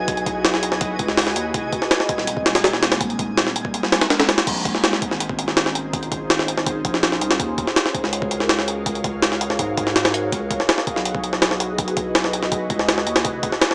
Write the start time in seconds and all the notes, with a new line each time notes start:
Already playing: B1 G#5
0.08 E4 F#4 G#4 B4 D#5, kick, closed hi-hat
0.17 closed hi-hat
0.26 kick, closed hi-hat
0.45 snare, closed hi-hat
0.54 snare
0.63 closed hi-hat
0.72 B1, snare
0.81 kick, closed hi-hat
0.99 C#2, kick, closed hi-hat
1.08 snare
1.17 snare, open hi-hat
1.27 snare
1.36 D#2, closed hi-hat
1.54 F1 G3 G#3 A#3 C4 D#4, kick, closed hi-hat
1.73 kick, closed hi-hat
1.82 snare
1.91 snare, closed hi-hat
2.00 snare
2.09 kick, closed hi-hat
2.18 D#1, snare
2.27 closed hi-hat
2.37 kick
2.46 snare, closed hi-hat
2.55 snare, closed hi-hat
2.64 snare, closed hi-hat
2.73 snare
2.83 snare, closed hi-hat
2.92 snare, closed hi-hat
3.00 G3 G#3 A#3 C4 D#4, kick, closed hi-hat
3.10 closed hi-hat
3.19 kick, closed hi-hat
3.38 snare, closed hi-hat
3.47 snare
3.56 closed hi-hat
3.65 D#1, kick
3.74 closed hi-hat
3.83 snare
3.92 snare, closed hi-hat
4.01 snare, closed hi-hat
4.10 snare, closed hi-hat
4.20 snare, closed hi-hat
4.29 snare, closed hi-hat
4.38 snare, closed hi-hat
4.47 A#1 C#4 D#4 F4 G#4 C5, kick, closed hi-hat, crash
4.65 kick, closed hi-hat
4.75 snare
4.84 snare, closed hi-hat
4.93 snare
5.02 kick, closed hi-hat
5.11 G#1, snare
5.20 closed hi-hat
5.29 kick
5.39 closed hi-hat
5.48 snare
5.57 snare, closed hi-hat
5.66 snare
5.75 closed hi-hat
5.93 C#4 D#4 F4 G#4 C5, kick, closed hi-hat
6.03 closed hi-hat
6.12 kick, closed hi-hat
6.30 snare, closed hi-hat
6.39 snare
6.48 closed hi-hat
6.57 G#1, snare
6.66 kick, closed hi-hat
6.85 A#1, kick, closed hi-hat
6.94 snare
7.03 snare, closed hi-hat
7.12 snare
7.21 C2, closed hi-hat
7.31 snare, closed hi-hat
7.40 D#2 F#4 G#4 A#4 C#5 F5, kick, closed hi-hat
7.58 kick, closed hi-hat
7.67 snare
7.76 snare, closed hi-hat
7.86 snare
7.95 kick, closed hi-hat
8.04 C#2, snare
8.13 closed hi-hat
8.22 kick
8.31 closed hi-hat
8.40 snare
8.49 snare, closed hi-hat
8.59 snare
8.68 closed hi-hat
8.86 F#4 G#4 A#4 C#5 F5, kick, closed hi-hat
8.95 closed hi-hat
9.04 kick, closed hi-hat
9.22 snare, closed hi-hat
9.32 snare
9.41 closed hi-hat
9.50 C#2, snare
9.59 G#2, kick, closed hi-hat
9.77 kick, closed hi-hat
9.87 snare
9.96 snare, closed hi-hat
10.05 snare, closed hi-hat
10.14 closed hi-hat
10.32 C#2 E4 F#4 G#4 B4 D#5, kick, closed hi-hat
10.51 kick, closed hi-hat
10.60 snare
10.69 snare, closed hi-hat
10.78 snare
10.87 kick, closed hi-hat
10.96 B1, snare
11.05 closed hi-hat
11.15 kick
11.24 closed hi-hat
11.33 snare
11.42 snare, closed hi-hat
11.51 snare
11.60 closed hi-hat
11.78 E4 F#4 G#4 B4 D#5, kick, closed hi-hat
11.88 closed hi-hat
11.97 kick, closed hi-hat
12.15 snare, closed hi-hat
12.24 snare
12.33 closed hi-hat
12.43 B1, snare
12.52 kick, closed hi-hat
12.70 C#2, kick, closed hi-hat
12.79 snare
12.89 snare, closed hi-hat
12.98 snare
13.07 D#2, closed hi-hat
13.16 snare, closed hi-hat
13.25 F1 G#3 A#3 C4 D#4 G4, kick, closed hi-hat
13.43 kick, closed hi-hat
13.52 snare
13.61 snare, closed hi-hat
13.71 snare